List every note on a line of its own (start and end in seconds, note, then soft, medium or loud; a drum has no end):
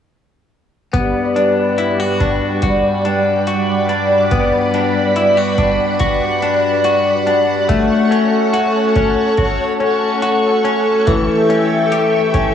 0.93 7.66 G3 medium
0.93 4.30 B3 medium
0.93 7.66 D5 medium
0.93 11.04 F#5 medium
0.93 7.66 B5 medium
0.93 kick medium
0.93 closed hi-hat medium
1.36 2.20 D4 soft
1.36 closed hi-hat soft
1.78 2.00 E4 medium
1.78 closed hi-hat medium
2.00 2.62 F#4 soft
2.20 3.05 D4 soft
2.20 kick medium
2.20 closed hi-hat soft
2.62 3.47 F#4 soft
2.62 kick medium
2.62 closed hi-hat medium
3.05 3.89 D4 soft
3.05 closed hi-hat soft
3.47 5.16 F#4 medium
3.47 closed hi-hat medium
3.89 4.74 D4 soft
3.89 closed hi-hat soft
4.31 7.68 B3 medium
4.31 kick medium
4.31 closed hi-hat soft
4.74 5.58 D4 soft
4.74 closed hi-hat soft
5.16 5.37 E4 medium
5.16 closed hi-hat medium
5.37 5.99 F#4 soft
5.58 6.42 D4 soft
5.58 kick medium
5.58 closed hi-hat soft
6.00 6.84 F#4 medium
6.00 kick medium
6.00 closed hi-hat medium
6.42 7.26 D4 soft
6.42 closed hi-hat soft
6.84 8.53 F#4 medium
6.84 closed hi-hat medium
7.27 8.11 D4 soft
7.27 closed hi-hat soft
7.69 11.19 A3 medium
7.69 12.54 A4 medium
7.69 11.04 C#5 medium
7.69 12.54 C#6 medium
7.69 kick medium
7.69 closed hi-hat medium
8.11 8.96 C#4 soft
8.11 closed hi-hat soft
8.53 9.37 F#4 medium
8.53 closed hi-hat medium
8.96 9.80 C#4 medium
8.96 kick medium
8.96 closed hi-hat soft
9.37 10.21 F#4 medium
9.37 kick medium
9.37 closed hi-hat medium
9.80 10.64 C#4 soft
9.80 closed hi-hat soft
10.22 11.16 F#4 medium
10.22 closed hi-hat medium
10.65 11.49 C#4 soft
10.65 closed hi-hat soft
11.07 12.54 E3 medium
11.07 12.54 E5 medium
11.07 12.54 G5 medium
11.07 kick medium
11.07 closed hi-hat medium
11.50 12.33 C#4 soft
11.50 closed hi-hat soft
11.92 12.54 G4 medium
11.92 closed hi-hat medium
12.34 12.54 C#4 soft
12.34 kick medium
12.34 closed hi-hat soft